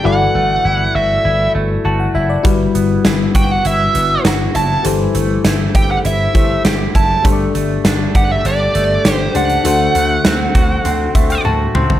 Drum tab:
HH |----------------|x-x-x-x-x-x-x-x-|x-x-x-x-x-x-x-x-|x-x-x-x-x-x-x-xx|
SD |----------------|----o-------o---|----o-------o---|----o-------o---|
T1 |----------------|----------------|----------------|----------------|
T2 |----------------|----------------|----------------|----------------|
FT |----------------|----------------|----------------|----------------|
BD |----------------|o-----o---------|------o---o---o-|o-----o---------|

HH |x-x-x-x-x-xx----|
SD |----o-----------|
T1 |------------o---|
T2 |--------------o-|
FT |---------------o|
BD |------o---o-----|